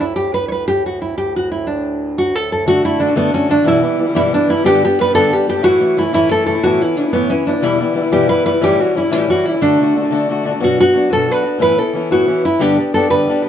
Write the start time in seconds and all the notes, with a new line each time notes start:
Already playing: D2 A2
0.00 E4
0.16 G4
0.34 B4
0.48 B4 C#5
0.68 G4
0.86 F#4
1.02 E4
1.18 G4
1.36 F#4
1.52 E4
1.67 D4
2.18 F#4
2.35 A4
2.52 A4
2.66 D3 A3 D4 F#4
2.83 D3 A3 D4 E4 F#4
2.99 D3 A3 D4 F#4
3.08 A3 D4 F#4
3.15 D3 A3 B3 D4 F#4
3.32 D3 A3 C#4 D4 F#4
3.48 D3 A3 D4 F#4
3.56 A3 D4 F#4
3.63 E2 B2 E3 G3 B3 E4
3.68 E4
3.80 E3 G3 B3 E4
3.98 E3 G3 B3 E4
4.06 E3 G3 B3 E4
4.14 E2 B2 E3 G3 B3 E4
4.32 E3 G3 B3 D4 E4
4.47 E3 G3 B3 E4
4.55 E3 G3 B3 E4
4.63 G2 D3 G3 B3 D4 G4
4.83 G3 B3 D4 G4
4.98 G3 B3 D4 G4 B4
5.06 G3 B3 D4 G4
5.14 G2 D3 G3 B3 D4 G4 A4
5.31 G3 B3 D4 G4
5.47 G3 B3 D4 G4
5.56 G3 B3 D4 G4
5.62 A2 E3 A3 C#4 E4 F#4
5.80 E3 A3 C#4 E4
5.97 E3 A3 C#4 E4
6.06 A3 C#4 E4
6.13 A2 E3 A3 C#4 E4
6.31 E3 A3 C#4 E4 A4
6.46 E3 A3 C#4 E4 A4
6.54 A3 C#4 E4
6.63 A2 E3 B3 C#4 E4 F#4
6.81 E3 B3 C#4 E4
6.97 E3 B3 C#4 D4 E4
7.06 B3 C#4 E4
7.13 A2 E3 B3 C#4 E4
7.28 E3 B3 C#4 E4
7.45 E3 B3 C#4 D4 E4
7.53 B3 C#4 E4
7.61 E2 B2 E3 G3 B3 E4
7.78 E3 G3 B3 E4
7.94 E3 G3 B3 E4
8.02 E3 G3 B3 E4
8.11 E2 B2 E3 G3 B3 E4 G4
8.28 E3 G3 B3 E4 B4
8.44 E3 G3 B3 E4 B4
8.51 E3 G3 B3 E4
8.61 A2 E3 G3 C#4 E4 G4
8.77 E3 G3 C#4 E4 F#4
8.94 E3 G3 C#4 E4
9.02 G3 C#4 E4
9.10 A2 E3 G3 C#4 E4 G4
9.28 E3 G3 C#4 E4 F#4
9.45 E3 G3 C#4 E4
9.54 G3 C#4 E4
9.61 D3 A3 D4 F#4
9.80 D3 A3 D4 F#4
9.95 D3 A3 D4 F#4
10.02 A3 D4 F#4
10.11 D3 A3 D4 F#4
10.28 D3 A3 D4 F#4
10.43 D3 A3 D4 F#4
10.51 A3 D4 F#4
10.60 B2 F#3 B3 D4 F#4
10.78 B3 D4 F#4
10.93 F#3 B3 D4 F#4
11.09 B2 F#3 B3 D4 F#4 A4
11.28 F#3 B3 D4 F#4 B4
11.43 B3 D4 F#4
11.59 A2 E3 B3 C#4 E4 B4
11.78 B3 C#4 E4 A4
11.93 E3 B3 C#4 E4
12.11 A2 E3 B3 C#4 E4 F#4
12.27 E3 B3 C#4 E4
12.44 B3 C#4 E4
12.59 G2 D3 G3 B3 D4 G4
12.77 B3 D4 G4
12.94 G3 B3 D4 G4 A4
13.10 G2 D3 G3 B3 D4 G4 B4
13.27 G3 B3 D4 G4
13.42 G3 B3 D4 G4